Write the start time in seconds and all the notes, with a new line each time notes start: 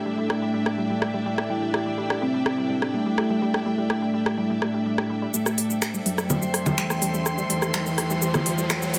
Already playing: A2 A3 D4 E4 A4 D5 E5 G5
0.06 G3
0.18 G3
0.30 G4, cross-stick
0.42 G3
0.54 G3
0.66 G4, cross-stick
0.78 G3
0.90 G3
1.02 G4, cross-stick
1.14 G3
1.26 G3
1.38 G4, cross-stick
1.50 G3 E4
1.62 G3
1.74 G4, cross-stick
1.86 G3
1.98 G3
2.10 G4, cross-stick
2.22 G3 C4
2.34 G3
2.46 G4, cross-stick
2.58 G3
2.70 G3
2.82 G4, cross-stick
2.94 G3 A3
3.06 G3
3.18 G4, cross-stick
3.30 G3
3.42 G3
3.54 G4, cross-stick
3.66 G3 A3
3.78 G3
3.90 G4, cross-stick
4.02 G3
4.14 G3
4.26 G4, cross-stick
4.38 G3
4.50 G3
4.62 G4, cross-stick
4.74 G3
4.86 G3
4.98 G4, cross-stick
5.10 G3
5.22 G3
5.34 G3 A3 A4 C5 G5, riser, shaker
5.46 G4, cross-stick, shaker
5.58 G3, open hi-hat, shaker
5.70 G3, shaker
5.82 G4, finger snap, cross-stick, shaker
5.94 G3, shaker
6.06 F#3 G3, open hi-hat
6.18 G4, cross-stick, shaker
6.30 G3 C6, low conga, shaker
6.42 G3, shaker
6.54 G4, cross-stick, open hi-hat
6.66 G3, low conga, shaker
6.78 E3 G3, finger snap, shaker
6.90 G4, cross-stick, shaker
7.02 G3, open hi-hat, shaker
7.14 G3, shaker
7.26 G4, cross-stick, shaker
7.38 G3, shaker
7.50 E3 G3, open hi-hat, shaker
7.62 G4, cross-stick, shaker
7.74 G3, finger snap, shaker
7.86 G3, shaker
7.98 G4, cross-stick, open hi-hat
8.10 G3, shaker
8.22 G3, shaker
8.34 G4, cross-stick, low conga, shaker
8.46 G3, open hi-hat
8.58 G3, shaker
8.70 G4, finger snap, cross-stick, shaker
8.82 G3, shaker
8.94 G3, open hi-hat, shaker